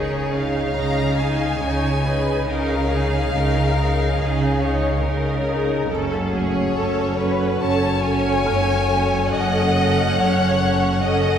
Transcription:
Already playing: double bass section C#2, synth drone C#2, cello section C#3, felt piano C#4 C#5, viola section D#4 G#4, violin section G#4 C#5, glass harmonica G#4 C#5 D#5, impact
0.32 viola section D#4 G#4, violin section F5
0.74 double bass section C#2, cello section C#3, viola section D#4 G#4, violin section A#5
1.17 viola section D#4 G#4, violin section G#5
1.60 double bass section C#2, cello section C#3, viola section D#4 G#4, violin section C#5
2.04 viola section D#4 G#4, violin section B4
2.46 double bass section C#2, synth drone C#2, cello section C#3, viola section D#4 G#4, glass harmonica G#4 C#5 D#5, violin section A#4 F5
2.90 viola section D#4 G#4, violin section G#4
3.32 double bass section C#2, cello section C#3, viola section D#4 G#4, violin section A#4
3.75 viola section D#4 G#4
4.18 double bass section C#2, cello section C#3, viola section D#4 G#4, violin section G#4
4.61 viola section D#4 G#4, violin section C#5
5.03 double bass section C#2, cello section C#3, viola section D#4 G#4, violin section A#4
5.46 viola section D#4 G#4
5.89 double bass section F#1, synth drone F#1, cello section F#2, viola section C#4 A4, glass harmonica F#4 C#5 F#5, violin section A4
6.32 viola section A3 C#4, violin section G#4 C#5
6.74 double bass section F#1, cello section F#2, viola section C#4 A4, violin section A4
7.18 viola section C#4 A4, violin section B4
7.60 double bass section F#1, cello section F#2, viola section C#4 A4, violin section C#5 A5
8.02 viola section C#4 A4, violin section G#5
8.46 double bass section F#1, cello section F#2, viola section C#4 A4, felt piano F6
8.89 viola section C#4 A4
9.31 synth drone F#1, double bass section F#1, cello section F#2, viola section C#4 A4, glass harmonica A4 C#5 F#5, violin section D#5 F#5
9.75 viola section C#4 A4
10.17 double bass section F#1, cello section F#2, viola section C#4 A4, violin section C#5
10.61 viola section C#4 A4
11.02 double bass section F#1, cello section F#2, viola section C#4 A4, violin section D#5

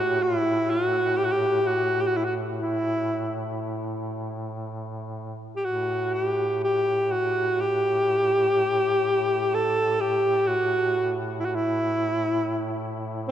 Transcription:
Already playing: duduk A2, alto saxophone F#4
0.23 alto saxophone E4
0.70 alto saxophone F#4
1.17 alto saxophone G4
1.24 alto saxophone F#4
1.32 alto saxophone G4
1.67 alto saxophone F#4
2.01 alto saxophone G4
2.07 alto saxophone F#4
2.17 alto saxophone E4
2.25 alto saxophone F#4
2.62 alto saxophone E4
5.56 alto saxophone G4
5.65 duduk A2, alto saxophone F#4
6.13 alto saxophone G4
6.63 alto saxophone G4
7.11 alto saxophone F#4
7.60 alto saxophone G4
9.54 alto saxophone A4
10.00 alto saxophone G4
10.47 alto saxophone F#4
11.39 alto saxophone E4
11.45 alto saxophone F#4
11.55 alto saxophone E4

